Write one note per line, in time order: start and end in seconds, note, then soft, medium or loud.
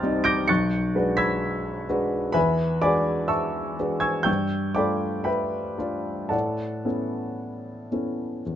0.00 0.52 C2 medium
0.00 0.03 G3 soft
0.00 0.45 G3 soft
0.00 0.03 C4 soft
0.00 0.45 C4 soft
0.00 0.04 D#4 soft
0.00 0.45 D#4 soft
0.00 0.04 D#5 medium
0.00 0.45 D#5 soft
0.00 0.51 G5 medium
0.00 0.51 A5 medium
0.00 0.52 C6 medium
0.00 0.21 D6 medium
0.00 0.51 D#6 medium
0.00 0.22 F6 medium
0.00 0.25 G6 medium
0.00 0.24 A6 medium
0.24 0.47 D6 medium
0.24 0.47 G6 medium
0.24 0.47 A#6 medium
0.24 0.48 D7 medium
0.48 0.94 B1 soft
0.48 1.15 C#6 medium
0.48 1.14 F#6 medium
0.48 1.14 A6 medium
0.48 1.18 C#7 medium
0.95 1.84 G#3 soft
0.95 1.85 D4 soft
0.95 1.85 F#4 soft
0.95 1.85 B4 soft
1.17 2.30 B5 medium
1.17 2.31 E6 medium
1.17 2.31 G#6 medium
1.17 2.34 B6 medium
1.89 2.32 G#3 soft
1.89 2.32 D4 soft
1.89 2.32 F#4 soft
1.89 2.32 B4 soft
2.32 2.80 E2 medium
2.32 2.78 B4 medium
2.32 2.78 E5 medium
2.32 2.78 G#5 soft
2.32 2.81 B5 medium
2.82 3.75 G#3 soft
2.82 3.75 D4 soft
2.82 3.76 F#4 soft
2.82 3.76 B4 soft
2.82 3.26 D5 medium
2.82 3.26 G#5 medium
2.82 3.27 B5 medium
2.82 3.30 D6 medium
3.28 3.98 E5 soft
3.28 3.98 A5 soft
3.28 3.98 C#6 soft
3.28 3.99 E6 medium
3.80 4.24 G#3 soft
3.80 4.24 D4 soft
3.80 4.24 F#4 soft
3.80 4.24 B4 soft
4.00 4.24 G#5 medium
4.00 4.24 C#6 medium
4.00 4.24 E6 medium
4.00 4.26 G#6 medium
4.23 4.76 G2 soft
4.23 4.72 G5 soft
4.23 4.73 C#6 soft
4.23 4.73 E6 soft
4.23 4.75 G6 medium
4.75 5.76 A3 soft
4.75 5.76 D4 soft
4.75 5.77 F4 soft
4.75 5.77 A4 soft
4.75 5.24 D5 soft
4.75 5.23 G5 soft
4.75 5.23 B5 soft
4.75 5.27 D6 medium
5.24 6.28 B4 soft
5.24 6.27 E5 soft
5.24 6.27 G5 soft
5.24 6.30 B5 medium
5.78 6.27 A3 soft
5.78 6.28 D4 soft
5.78 6.28 F4 soft
5.78 6.28 A4 soft
6.29 6.84 A2 soft
6.29 6.85 A4 soft
6.29 8.56 D5 soft
6.29 8.56 F#5 soft
6.29 8.56 A5 medium
6.85 7.88 B3 soft
6.85 7.88 C#4 soft
6.85 7.88 E4 soft
6.85 7.88 A4 soft
7.91 8.41 B3 soft
7.91 8.42 C#4 soft
7.91 8.42 E4 soft
7.91 8.42 A4 soft
8.46 8.56 E2 soft